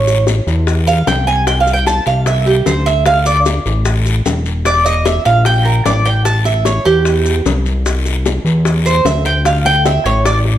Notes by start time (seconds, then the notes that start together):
Already playing: A1 C#5
0.08 high bongo, maracas
0.27 high bongo, short guiro, maracas
0.47 E2, high bongo, short guiro, maracas
0.67 high bongo, long guiro, maracas
0.87 F5, high bongo, maracas
1.07 C2 G5, high bongo, low bongo, short guiro, maracas
1.27 G#5, short guiro, maracas
1.47 G5, high bongo, long guiro, maracas
1.60 F5
1.67 high bongo, maracas
1.73 G5
1.86 A5, high bongo, short guiro, maracas
2.06 C2 F5, high bongo, short guiro, maracas
2.26 E5, high bongo, long guiro, maracas
2.46 G4, high bongo
2.66 D2 C5, high bongo, low bongo, short guiro, maracas
2.86 E5, short guiro, maracas
3.06 F5, high bongo, long guiro, maracas
3.26 D5, high bongo, maracas
3.46 high bongo, short guiro, maracas
3.66 A1, high bongo, short guiro, maracas
3.85 high bongo, long guiro, maracas
4.06 high bongo, maracas
4.26 E1, high bongo, low bongo, short guiro, maracas
4.46 short guiro, maracas
4.65 D5, high bongo, long guiro, maracas
4.86 D#5, high bongo, maracas
5.05 E5, high bongo, short guiro, maracas
5.25 A#1 F5, high bongo, short guiro, maracas
5.45 G5, high bongo, long guiro, maracas
5.65 A#4, high bongo
5.85 A1 D5, high bongo, low bongo, short guiro, maracas
6.05 G5, short guiro, maracas
6.25 A5, high bongo, long guiro, maracas
6.45 E5, high bongo, maracas
6.65 C#5, high bongo, short guiro, maracas
6.85 E2 G4, high bongo, short guiro, maracas
7.05 high bongo, long guiro, maracas
7.26 high bongo, maracas
7.46 C2, high bongo, low bongo, short guiro, maracas
7.66 short guiro, maracas
7.86 high bongo, long guiro, maracas
8.06 high bongo, maracas
8.26 high bongo, short guiro, maracas
8.45 E2, high bongo, short guiro, maracas
8.65 high bongo, long guiro, maracas
8.85 C5, high bongo, maracas
9.05 D2 E5, high bongo, low bongo, short guiro, maracas
9.25 G5, short guiro, maracas
9.45 F5, high bongo, long guiro, maracas
9.65 G5, high bongo, maracas
9.85 E5, high bongo, short guiro, maracas
10.05 A1 C#5, high bongo, short guiro, maracas
10.25 D5, high bongo, long guiro, maracas
10.45 high bongo